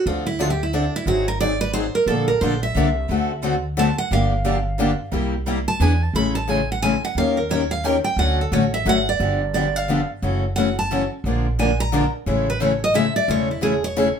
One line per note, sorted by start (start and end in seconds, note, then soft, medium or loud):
0.06 0.87 D2 loud
0.06 0.26 D3 medium
0.06 0.26 F3 medium
0.06 0.27 C4 medium
0.06 0.27 D4 medium
0.06 0.26 F4 medium
0.06 0.27 A4 medium
0.26 0.40 E4 medium
0.39 0.50 D3 loud
0.39 0.50 F3 medium
0.39 0.50 C4 medium
0.39 0.50 D4 loud
0.39 0.50 F4 medium
0.39 0.50 A4 medium
0.50 0.61 G4 medium
0.63 0.74 E4 medium
0.73 0.84 D3 medium
0.73 0.84 F3 medium
0.73 0.84 C4 loud
0.73 0.84 D4 loud
0.73 0.94 D4 medium
0.73 0.84 A4 loud
0.96 1.07 E4 medium
1.06 1.87 G#1 medium
1.06 1.27 D#3 medium
1.06 1.27 F#3 medium
1.06 1.28 C4 medium
1.06 1.28 D#4 medium
1.06 1.27 F#4 medium
1.06 1.28 G#4 medium
1.28 1.40 A#4 loud
1.40 1.51 D#3 medium
1.40 1.52 F#3 medium
1.40 1.52 C4 medium
1.40 1.52 D#4 medium
1.40 1.52 G#4 medium
1.40 1.60 D5 loud
1.61 1.73 B4 loud
1.73 1.85 D#3 medium
1.73 1.85 F#3 loud
1.73 1.85 C4 loud
1.73 1.85 D#4 medium
1.73 1.86 G#4 loud
1.73 1.94 C5 loud
1.95 2.07 A#4 medium
2.06 2.34 A#1 medium
2.06 2.29 D3 medium
2.06 2.29 F3 medium
2.06 2.29 A#3 medium
2.06 2.29 D4 medium
2.06 2.27 A4 medium
2.06 2.29 A4 medium
2.28 2.41 A#4 medium
2.41 2.70 A#1 medium
2.41 2.53 D3 medium
2.41 2.53 F3 medium
2.41 2.53 A#3 medium
2.41 2.53 D4 medium
2.41 2.54 A4 loud
2.41 2.62 C5 medium
2.63 3.40 E5 medium
2.75 3.04 C2 medium
2.75 2.87 D3 loud
2.75 2.87 F3 medium
2.75 2.87 A#3 loud
2.75 2.88 D4 loud
2.75 2.88 A4 loud
3.09 3.91 D2 medium
3.09 3.31 D3 medium
3.09 3.31 A3 medium
3.09 3.31 C4 medium
3.09 3.31 F#4 medium
3.09 3.31 A4 medium
3.43 3.54 D3 medium
3.43 3.54 A3 medium
3.43 3.55 C4 medium
3.43 3.55 F#4 loud
3.43 3.55 A4 medium
3.77 3.88 D3 loud
3.77 3.88 A3 loud
3.77 3.88 C4 medium
3.77 3.88 F#4 loud
3.77 3.89 A4 loud
3.77 3.98 A5 loud
3.98 4.11 F#5 loud
4.11 4.92 G1 medium
4.11 4.32 D3 medium
4.11 4.32 F3 medium
4.11 4.32 A#3 medium
4.11 4.33 D4 medium
4.11 4.33 G4 medium
4.11 5.10 F5 medium
4.45 4.56 D3 medium
4.45 4.56 F3 medium
4.45 4.56 A#3 medium
4.45 4.56 D4 medium
4.45 4.57 G4 loud
4.79 4.90 D3 loud
4.79 4.90 F3 loud
4.79 4.90 A#3 loud
4.79 4.90 D4 loud
4.79 4.91 G4 loud
5.12 5.67 C2 medium
5.12 5.33 C3 medium
5.12 5.33 G3 medium
5.12 5.34 A#3 medium
5.12 5.34 E4 medium
5.12 5.34 G4 medium
5.47 5.58 C3 medium
5.47 5.58 G3 loud
5.47 5.58 A#3 loud
5.47 5.58 E4 medium
5.47 5.58 G4 loud
5.68 5.82 A5 loud
5.80 6.07 E2 medium
5.80 5.92 E3 loud
5.80 5.92 B3 loud
5.80 5.92 D4 loud
5.80 5.92 G#4 loud
5.80 5.92 B4 loud
5.80 6.03 G#5 loud
6.03 6.15 A5 loud
6.13 6.95 A1 medium
6.13 6.35 C#3 medium
6.13 6.36 E3 medium
6.13 6.35 G#3 medium
6.13 6.36 A3 medium
6.13 6.36 C#4 medium
6.13 6.36 E4 medium
6.13 6.36 G#4 medium
6.13 6.36 A4 medium
6.13 6.35 B5 loud
6.35 6.50 A5 medium
6.48 6.59 C#3 medium
6.48 6.59 E3 medium
6.48 6.60 G#3 medium
6.48 6.59 A3 medium
6.48 6.60 C#4 medium
6.48 6.60 E4 medium
6.48 6.60 G#4 medium
6.48 6.60 A4 medium
6.48 6.69 G#5 medium
6.72 6.82 F#5 medium
6.82 6.93 C#3 medium
6.82 6.94 E3 medium
6.82 6.94 G#3 medium
6.82 6.94 A3 medium
6.82 6.94 C#4 loud
6.82 6.94 E4 medium
6.82 6.94 G#4 loud
6.82 6.94 A4 medium
6.82 7.03 G#5 loud
7.05 7.17 F#5 medium
7.15 7.97 D#2 medium
7.15 7.38 D#3 medium
7.15 7.38 A#3 medium
7.15 7.38 C#4 medium
7.15 7.38 G4 medium
7.15 7.38 A#4 medium
7.15 7.37 F5 medium
7.37 7.50 A#4 soft
7.51 7.61 D#3 medium
7.51 7.62 A#3 medium
7.51 7.62 C#4 medium
7.51 7.62 G4 medium
7.51 7.62 A#4 medium
7.51 7.71 C#5 medium
7.71 7.85 F5 medium
7.84 7.95 D#3 medium
7.84 7.95 A#3 medium
7.84 7.96 C#4 loud
7.84 7.96 G4 loud
7.84 7.96 A#4 loud
7.84 7.97 G5 medium
8.04 8.18 G5 loud
8.17 8.44 D2 medium
8.17 8.39 D3 medium
8.17 8.39 F#3 medium
8.17 8.40 A3 medium
8.17 8.40 C#4 medium
8.17 8.40 F#4 medium
8.17 8.39 A4 medium
8.17 8.39 F#5 medium
8.41 8.53 A4 medium
8.52 8.81 A1 medium
8.52 8.63 D3 medium
8.52 8.63 F#3 medium
8.52 8.64 A3 medium
8.52 8.64 C#4 loud
8.52 8.64 F#4 medium
8.52 8.64 A4 medium
8.52 8.73 C#5 medium
8.74 8.86 E5 medium
8.86 9.15 G#1 medium
8.86 8.97 D3 medium
8.86 8.97 F#3 loud
8.86 8.97 A3 medium
8.86 8.97 C#4 loud
8.86 8.98 F#4 loud
8.86 8.98 A4 loud
8.86 9.08 F#5 loud
9.09 9.40 D5 loud
9.19 10.01 G1 loud
9.19 9.40 D3 medium
9.19 9.41 F3 medium
9.19 9.41 B3 medium
9.19 9.41 D4 medium
9.19 9.41 G4 medium
9.54 9.66 D3 medium
9.54 9.66 F3 medium
9.54 9.66 B3 medium
9.54 9.66 D4 medium
9.54 9.66 G4 medium
9.54 9.76 D5 medium
9.76 10.09 F5 medium
9.88 9.99 D3 medium
9.88 10.00 F3 medium
9.88 10.00 B3 medium
9.88 10.00 D4 loud
9.88 10.00 G4 loud
10.22 11.04 F#1 medium
10.22 10.43 C#3 medium
10.22 10.43 E3 medium
10.22 10.43 F#3 medium
10.22 10.43 A3 medium
10.22 10.43 C#4 medium
10.22 10.44 E4 medium
10.22 10.44 F#4 medium
10.22 10.44 A4 medium
10.56 10.67 C#3 medium
10.56 10.68 E3 medium
10.56 10.68 F#3 medium
10.56 10.68 A3 medium
10.56 10.68 C#4 medium
10.56 10.68 E4 medium
10.56 10.68 F#4 loud
10.56 10.68 A4 medium
10.56 10.76 F#5 medium
10.79 11.09 A5 loud
10.91 11.01 C#3 medium
10.91 11.02 E3 medium
10.91 11.01 F#3 medium
10.91 11.02 A3 medium
10.91 11.02 C#4 loud
10.91 11.02 E4 medium
10.91 11.02 F#4 loud
10.91 11.02 A4 medium
11.24 12.05 A#1 medium
11.24 11.45 D3 medium
11.24 11.46 F3 medium
11.24 11.46 G#3 medium
11.24 11.46 A#3 medium
11.24 11.46 D4 medium
11.24 11.46 F4 medium
11.24 11.46 G#4 medium
11.24 11.46 A#4 medium
11.59 11.69 D3 medium
11.59 11.69 F3 medium
11.59 11.70 G#3 medium
11.59 11.70 A#3 medium
11.59 11.70 D4 loud
11.59 11.70 F4 medium
11.59 11.70 G#4 medium
11.59 11.71 A#4 medium
11.59 11.79 G#5 medium
11.80 12.11 A#5 loud
11.92 12.03 D3 medium
11.92 12.03 F3 loud
11.92 12.04 G#3 medium
11.92 12.03 A#3 loud
11.92 12.04 D4 loud
11.92 12.04 F4 medium
11.92 12.04 G#4 loud
11.92 12.04 A#4 loud
12.26 13.08 A1 medium
12.26 12.47 C#3 medium
12.26 12.47 E3 medium
12.26 12.47 G#3 medium
12.26 12.47 A3 medium
12.26 12.47 C#4 medium
12.26 12.48 E4 medium
12.26 12.48 G#4 medium
12.26 12.48 A4 medium
12.50 12.63 B4 medium
12.60 12.71 C#3 medium
12.60 12.71 E3 medium
12.60 12.71 G#3 medium
12.60 12.72 A3 medium
12.60 12.72 C#4 loud
12.60 12.72 E4 loud
12.60 12.72 G#4 loud
12.60 12.72 A4 medium
12.60 12.81 C#5 medium
12.84 12.95 D#5 loud
12.94 13.05 C#3 loud
12.94 13.05 E3 medium
12.94 13.05 G#3 medium
12.94 13.05 A3 loud
12.94 13.06 C#4 loud
12.94 13.05 E4 loud
12.94 13.05 G#4 loud
12.94 13.06 A4 loud
12.94 13.15 E5 loud
13.16 13.28 D5 loud
13.28 14.10 E1 medium
13.28 13.49 C#3 medium
13.28 13.49 E3 medium
13.28 13.49 G#3 medium
13.28 13.50 A3 medium
13.28 13.50 C#4 medium
13.28 13.49 E4 medium
13.28 13.50 G#4 medium
13.28 13.49 A4 medium
13.28 13.49 C#5 loud
13.51 13.63 E4 medium
13.61 13.72 C#3 medium
13.61 13.73 E3 medium
13.61 13.74 G#3 medium
13.61 13.73 A3 medium
13.61 13.73 C#4 loud
13.61 13.74 E4 medium
13.61 13.73 G#4 loud
13.61 13.83 G#4 medium
13.61 13.74 A4 medium
13.84 14.15 C#5 medium
13.96 14.07 C#3 loud
13.96 14.07 E3 loud
13.96 14.07 G#3 medium
13.96 14.07 A3 loud
13.96 14.07 C#4 loud
13.96 14.08 E4 loud
13.96 14.08 G#4 loud
13.96 14.08 A4 medium